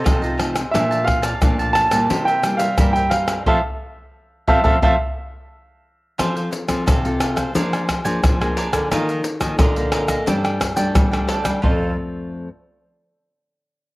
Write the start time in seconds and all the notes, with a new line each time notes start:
Already playing: A4
0.04 C3 F3 A3 D#4 F4 A4 C5 D#5, pandeiro, tamborim, shaker, surdo
0.22 F4 A4 C5 D#5, pandeiro, shaker
0.38 F3 A3 D#4 F4 A4 C5 D#5, pandeiro, tamborim
0.56 pandeiro, tamborim, shaker
0.71 A#2 F3 A3 D4 A#4 D5 E5 F5 A5, pandeiro, tamborim, shaker, surdo
0.91 D5 F5 A5, pandeiro, shaker
1.05 F5, muted cavaquinho stroke, pandeiro, tamborim, surdo
1.22 D5 F5 A5, pandeiro, tamborim, shaker
1.42 F2 A#2 F3 A3 D4 A#4 D5 F5 A5, pandeiro, tamborim, shaker, surdo
1.59 D5 F5 A5, pandeiro, shaker
1.73 A5, pandeiro, tamborim, shaker
1.91 A#2 G3 A#3 E4 D5 F5 A5, pandeiro, tamborim, shaker
2.10 C3 E4 A#4 C5 E5, pandeiro, shaker, surdo
2.25 C5 E5 G5, pandeiro, shaker
2.30 A#4
2.43 G3 A#3 E4, muted cavaquinho stroke, pandeiro, tamborim, shaker
2.57 G3 C5 E5 F5, pandeiro, shaker
2.61 A#4
2.78 G2 G3 A#3 E4 A#4 C5 E5, pandeiro, tamborim, shaker, surdo
2.93 E5 G5, pandeiro, shaker
2.97 A#4 C5
3.10 A#4 C5 F5, pandeiro, tamborim
3.28 pandeiro, tamborim, shaker
3.46 F3 A3 C4 A4 C5 E5 F5 A5, surdo
4.47 F3 A3 C4 A4 C5 E5 F5 A5, surdo
4.63 F3 A3 C4 A4 C5 E5 F5 A5, surdo
4.82 F3 A3 C4 A4 C5 E5 F5 A5, surdo
6.18 F3 C4 F4 A4 C5 F5, pandeiro, tamborim, shaker, surdo
6.36 A4 C5 F5, pandeiro, shaker
6.51 muted cavaquinho stroke, pandeiro, shaker
6.68 F3 C4 F4 A4, pandeiro, tamborim, shaker, surdo
6.86 C3 F4 A4 C5 F5, pandeiro, tamborim, shaker, surdo
7.04 C4 F4 A4 C5 F5, pandeiro, shaker
7.20 F4 A4 C5 F5, pandeiro, tamborim, shaker
7.36 A4 C5 F5, pandeiro, tamborim, shaker, surdo
7.55 F3 A#3 D4 G#4 A#4 D5 G#5, pandeiro, shaker, surdo
7.73 A#4 D5 G#5, pandeiro, tamborim, shaker
7.89 muted cavaquinho stroke, pandeiro, tamborim, shaker, surdo
8.05 F3 A#3 D4 G#4 A#4 D5 G#5, pandeiro, shaker
8.23 F3, pandeiro, tamborim, shaker, surdo
8.40 A#3 D4 G#4 A#4 D5 G#5, pandeiro, tamborim, shaker
8.56 D4 A#4 D5 G#5, pandeiro
8.73 D3 A#4 D5 G#5, pandeiro, tamborim, shaker, surdo
8.91 D#3 F3 A#3 D#4 F4 A#4 D#5 F5, pandeiro, tamborim, shaker, surdo
9.09 A#4 D#5 F5, pandeiro, shaker
9.24 muted cavaquinho stroke, pandeiro, shaker
9.40 D#3 F3 A#3 D#4, pandeiro, tamborim, shaker, surdo
9.59 A#2 D3 F4 A#4 D#5 F5, pandeiro, tamborim, shaker, surdo
9.76 F3 A#3 A#4 D#5 F5, pandeiro, shaker
9.92 F4 A#4 D#5 F5, pandeiro, tamborim
10.08 A#4 D#5 F5, pandeiro, tamborim, shaker, surdo
10.26 G2 G3 A3 D4 A4 D5 G5, pandeiro, shaker, surdo
10.44 A4 D5 G5, pandeiro, tamborim, shaker
10.60 muted cavaquinho stroke, pandeiro, tamborim, shaker, surdo
10.76 G3 A3 D4 A4 D5 G5, pandeiro, shaker
10.95 D3 G3, pandeiro, tamborim, shaker, surdo
11.11 G3 A3 D4 A4 D5 G5, pandeiro, tamborim, shaker
11.28 D4 A4 D5 G5, pandeiro
11.44 G3 A4 D5 G5, pandeiro, tamborim, shaker, surdo
11.62 F2 F3 A3 C4 F4 A4 C5 F5, surdo